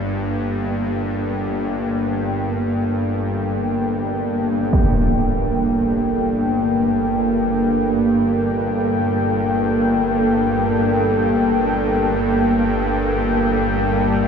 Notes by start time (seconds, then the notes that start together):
Already playing: G1 G2 A#3 A4 G5
4.72 G1 G2, impact